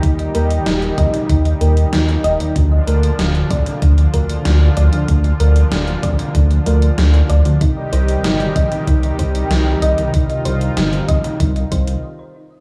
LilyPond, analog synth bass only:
\new Staff \with { instrumentName = "Analog synth bass" } { \clef bass \time 4/4 \key bes \mixolydian \tempo 4 = 95 ees,8 ees,8 ees,,8 ees,16 r16 ees,8 ees,8 ees,8 ees,,16 ees,16 | d,8 d,8 d,,8 d,16 r16 d,8 d,8 d,8 d,16 d,16 | d,8 d,8 d,,8 d,16 r16 d,8 d,8 d,8 d,16 d,16 | c,8 c,8 g,,8 c,16 r16 c,8 c,8 c,8 c,16 c,16 |
c,8 c,8 g,,8 c,16 r16 c,8 c,8 r4 | }